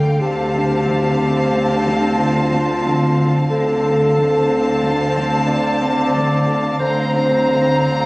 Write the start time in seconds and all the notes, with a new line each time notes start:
Already playing: D2 D3 A#3 A4 F5 G5
0.20 D2 D3 C4 G4 F5 A5
0.54 D4
0.86 D3
1.19 D3
1.52 D4
1.85 D3
2.18 D3 F4
2.52 D4
2.85 D3
3.17 D3
3.50 D2 D3 C4 A4 F5 A5
3.83 D4
4.16 D3
4.50 D3
4.83 D4
5.15 D3
5.47 D3 D5
5.81 D4
6.15 D3
6.47 D3
6.80 D2 D3 C4 C5 F5 A#5
7.13 D4
7.46 D3
7.79 D3